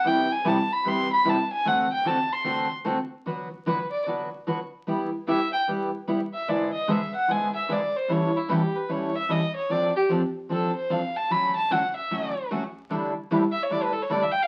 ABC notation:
X:1
M:4/4
L:1/16
Q:"Swing" 1/4=149
K:Dmix
V:1 name="Violin"
g2 _a2 =a2 b2 c'2 b2 a2 _a2 | f2 g2 a2 c'4 z6 | [K:D] z4 B2 d2 z8 | z4 e2 g2 z6 e2 |
d2 _e2 =e2 f2 ^g2 e2 d2 =c2 | c2 E2 G2 B2 c2 e2 _e2 c2 | d2 G2 z4 A2 =c2 =f2 a2 | b2 a2 f2 e6 z4 |
z6 e c d B A c d e g =f |]
V:2 name="Steel-string acoustic guitar"
[C,G,B,EG]2 z2 [C,G,B,EG]2 z2 [C,G,B,EG]2 z2 [C,G,B,EG]2 z2 | [D,A,CFA]2 z2 [D,A,CFA]2 z2 [D,A,CFA]2 z2 [D,A,CFA]2 z2 | [K:D] [D,F,B,FB]2 z2 [D,F,B,FB]2 z2 [D,F,B,FB]2 z2 [D,F,B,FB]2 z2 | [G,B,EG]2 z2 [G,B,EG]2 z2 [G,B,EG]2 z2 [G,B,EG]2 z2 |
[^G,,D,^G,B,E^G]2 z2 [G,,D,G,B,EG]2 z2 [G,,D,G,B,EG]2 z2 [G,,D,G,B,EG]2 z2 | [A,,E,G,CEA]2 z2 [A,,E,G,CEA]2 z2 [A,,E,G,CEA]2 z2 [A,,E,G,CEA]2 z2 | [=F,=CDA]2 z2 [F,CDA]2 z2 [F,CDA]2 z2 [F,CDA]2 z2 | [D,F,A,CF]2 z2 [D,F,A,CF]2 z2 [D,F,A,CF]2 z2 [D,F,A,CF]2 z2 |
[A,,D,G,DEA]2 z2 [A,,D,G,DEA]2 z2 [A,,D,G,DEA]2 z2 [A,,D,G,DEA]2 z2 |]